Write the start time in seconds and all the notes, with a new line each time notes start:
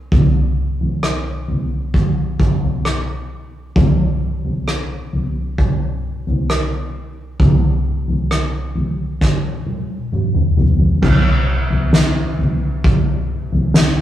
0.12 kick, floor tom
0.81 floor tom
1.03 cross-stick
1.48 floor tom
1.94 kick, floor tom
2.40 kick
2.63 floor tom
2.85 cross-stick
3.76 kick, floor tom
4.44 floor tom
4.68 cross-stick
5.13 floor tom
5.58 kick, floor tom
6.27 floor tom
6.50 cross-stick
7.40 kick, floor tom
8.08 floor tom
8.31 cross-stick
8.75 floor tom
9.21 kick, snare
9.66 high tom
10.12 mid tom
10.34 mid tom
10.57 floor tom
10.79 floor tom
11.02 kick, floor tom, crash
11.70 floor tom
11.93 snare
12.39 floor tom
12.84 kick, floor tom
13.52 floor tom
13.74 snare